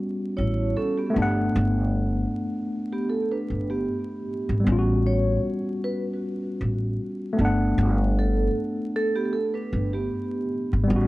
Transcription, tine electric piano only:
0.00 1.08 G3 medium
0.00 1.10 B3 medium
0.00 1.12 C#4 medium
0.00 1.14 F#4 medium
1.10 4.20 A3 medium
1.10 4.22 B3 medium
1.18 4.24 D4 medium
1.18 4.26 F#5 medium
4.60 7.32 G3 medium
4.64 7.34 B3 medium
4.68 7.36 C#4 medium
4.68 4.76 F4 medium
4.79 7.41 F#4 medium
7.33 10.43 A3 medium
7.37 10.45 B3 medium
7.41 10.47 D4 medium
7.41 10.49 F#5 medium
10.84 11.07 G3 medium
10.88 11.07 B3 medium
10.92 11.07 C#4 medium
10.96 11.07 F#4 medium

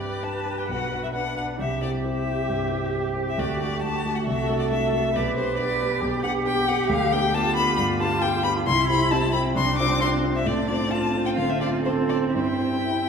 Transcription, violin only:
0.00 0.25 D5 medium
0.24 0.60 A5 medium
0.58 0.68 G5 soft
0.69 1.02 F#5 medium
1.03 1.08 E5 medium
1.14 1.36 F#5 medium
1.37 1.45 F#5 medium
1.60 1.81 E5 medium
1.82 1.90 D5 medium
2.05 3.03 E5 medium
3.29 3.41 E5 medium
3.39 3.60 D5 medium
3.61 3.82 D5 medium
3.82 4.17 A5 medium
4.16 4.26 F#5 medium
4.26 4.59 E5 medium
4.60 4.70 D5 medium
4.71 4.93 E5 medium
4.94 5.17 E5 medium
5.16 5.37 D5 medium
5.37 5.57 C5 medium
5.58 6.22 D5 medium
6.24 6.32 F#5 medium
6.47 6.70 G5 medium
6.68 6.90 F#5 medium
6.90 7.14 F5 medium
7.12 7.36 G5 medium
7.34 7.56 A5 loud
7.56 7.77 B5 medium
7.77 7.85 B5 loud
8.00 8.23 A5 medium
8.22 8.44 G5 loud
8.44 8.52 B5 medium
8.67 8.89 C6 loud
8.90 9.13 B5 loud
9.11 9.32 A5 loud
9.33 9.41 B5 medium
9.57 9.78 C6 loud
9.79 10.01 D6 loud
10.01 10.09 C6 loud
10.35 10.48 E5 medium
10.47 10.67 D5 medium
10.68 10.92 D5 medium
10.91 11.25 A5 medium
11.26 11.30 G5 medium
11.37 11.51 F5 medium
11.50 11.60 E5 medium
11.61 11.69 D5 medium
11.85 11.93 C5 medium
12.09 12.17 D5 medium
12.35 13.09 G5 medium

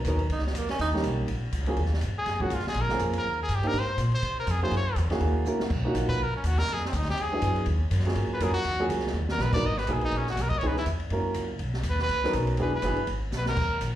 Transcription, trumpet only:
2.18 2.43 G#4 medium
2.42 2.56 F#4 medium
2.54 2.67 F4 medium
2.68 2.83 G#4 medium
2.81 3.03 A#4 medium
3.18 3.39 A#4 medium
3.43 3.57 G#4 medium
3.55 3.69 G4 medium
3.67 3.80 A#4 loud
3.79 4.01 C5 medium
4.15 4.37 C5 loud
4.40 4.52 A#4 medium
4.51 4.63 G#4 medium
4.63 4.72 C5 medium
4.76 4.97 C#5 medium
6.09 6.24 B4 loud
6.23 6.35 A#4 medium
6.37 6.48 C#4 medium
6.46 6.60 F#4 loud
6.58 6.75 A#4 loud
6.73 6.85 G#4 medium
6.87 6.98 C4 medium
6.96 7.09 D#4 medium
7.10 7.23 G4 loud
7.21 7.69 G#4 medium
8.34 8.45 B4 medium
8.43 8.53 G#4 medium
8.54 8.87 F#4 loud
9.31 9.43 A#4 loud
9.42 9.53 B4 medium
9.54 9.68 D5 loud
9.66 9.80 D#5 medium
9.78 9.94 B4 loud
9.93 10.04 G#4 medium
10.05 10.19 D#4 loud
10.17 10.29 C#4 medium
10.30 10.43 F#4 medium
10.42 10.50 A#4 medium
10.49 10.60 D#5 loud
10.59 10.69 C#5 medium
10.67 10.78 B4 medium
10.78 10.84 E4 medium
11.89 12.01 B4 medium
12.02 12.33 B4 loud
12.62 12.74 B4 medium
12.76 13.07 B4 medium
13.37 13.48 B4 medium
13.48 13.80 A#4 medium

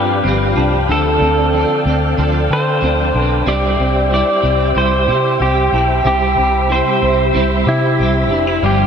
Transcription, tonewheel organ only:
0.00 0.85 G4 medium
0.00 3.43 D5 medium
0.00 3.43 F5 medium
0.00 6.01 G5 medium
0.89 3.45 A4 medium
3.47 8.87 G4 medium
3.47 8.59 C5 medium
3.47 8.59 E5 medium
6.05 8.61 B5 medium
8.63 8.87 D5 medium
8.63 8.87 F5 medium
8.63 8.87 C6 medium

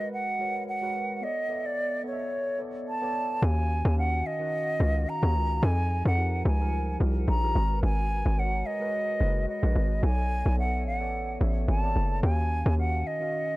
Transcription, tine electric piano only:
0.00 0.39 G#3 medium
0.00 0.39 F#4 medium
0.00 0.40 A#4 medium
0.00 0.84 B4 medium
0.39 0.73 G#3 medium
0.39 0.73 F#4 medium
0.39 0.74 A#4 medium
0.39 0.74 C#5 medium
0.81 1.14 G#3 medium
0.81 1.15 F#4 medium
0.81 1.15 A#4 medium
0.81 1.16 B4 medium
1.21 1.44 B3 medium
1.21 1.45 A4 medium
1.21 1.45 C#5 medium
1.21 1.45 D5 medium
1.48 1.94 B3 medium
1.48 1.95 A4 medium
1.48 1.95 D5 medium
1.48 1.96 E5 medium
2.04 2.49 B3 medium
2.04 2.50 A4 medium
2.04 2.50 C#5 medium
2.04 2.13 D#5 medium
2.13 2.54 E5 medium
2.59 2.93 B3 medium
2.59 2.93 A4 medium
2.59 2.94 C#5 medium
2.59 2.94 D5 medium
3.01 3.34 B3 medium
3.01 3.35 A4 medium
3.01 3.35 C#5 medium
3.01 3.36 D5 loud
3.41 3.87 D#3 medium
3.41 3.87 C#4 medium
3.41 3.88 F#4 medium
3.96 4.30 D#3 medium
3.96 4.31 C#4 medium
3.96 4.31 F#4 medium
3.96 4.32 F5 medium
4.39 4.72 D#3 medium
4.39 4.72 C#4 medium
4.39 4.73 F#4 medium
4.39 4.73 F#5 medium
4.79 5.13 D#3 medium
4.79 5.13 C#4 medium
4.79 5.14 F#4 medium
4.79 5.14 F5 medium
5.22 5.55 D#3 medium
5.22 5.55 C#4 medium
5.22 5.56 F#4 medium
5.22 5.56 G#5 medium
5.62 6.07 F3 medium
5.62 6.08 D#4 medium
5.62 6.08 F4 medium
5.62 6.09 G#4 medium
6.17 6.51 F3 medium
6.17 6.51 D#4 medium
6.17 6.52 G4 medium
6.17 6.52 A#4 medium
6.59 6.92 F3 medium
6.59 6.93 G3 medium
6.59 6.93 D#4 medium
6.59 6.94 A#4 medium
6.99 7.33 F3 medium
6.99 7.34 D#4 medium
6.99 7.34 G4 medium
6.99 7.35 A#4 medium
7.42 7.55 F3 medium
7.42 7.55 D#4 medium
7.42 7.56 G4 medium
7.42 7.54 A#4 medium
7.54 8.22 G#3 medium
7.54 8.22 F#4 medium
7.54 8.23 A#4 medium
7.54 8.23 B4 medium
8.36 8.71 G#3 medium
8.36 8.71 F#4 medium
8.36 8.72 A#4 medium
8.36 8.72 C#5 medium
8.79 9.12 G#3 medium
8.79 9.13 F#4 medium
8.79 9.13 A#4 medium
8.79 9.14 B4 medium
9.19 9.53 G#3 medium
9.19 9.54 F#4 medium
9.19 9.54 A#4 medium
9.19 9.55 B4 medium
9.62 9.95 G#3 medium
9.62 9.95 F#4 medium
9.62 9.96 A#4 medium
9.62 9.96 B4 medium
10.02 10.47 B3 medium
10.02 10.48 A4 medium
10.02 10.48 C#5 medium
10.02 10.49 D5 medium
10.57 10.91 B3 medium
10.57 10.91 A4 medium
10.57 10.92 C#5 medium
10.57 10.92 E5 medium
10.99 11.33 B3 medium
10.99 11.33 A4 medium
10.99 11.33 C#5 medium
10.99 11.34 D5 medium
11.39 11.74 B3 medium
11.39 11.74 A4 medium
11.39 11.74 C#5 medium
11.39 11.75 E5 medium
11.82 12.15 B3 medium
11.82 12.16 A4 medium
11.82 12.16 C#5 medium
11.82 12.16 D5 medium
12.22 12.68 D#3 medium
12.22 12.68 C#4 medium
12.22 12.69 F#4 medium
12.22 12.69 F5 medium
12.77 13.11 D#3 medium
12.77 13.12 C#4 medium
12.77 13.12 F#4 medium
12.77 13.12 F5 medium
13.20 13.53 D#3 medium
13.20 13.53 C#4 medium
13.20 13.54 F#4 medium
13.20 13.54 F5 medium

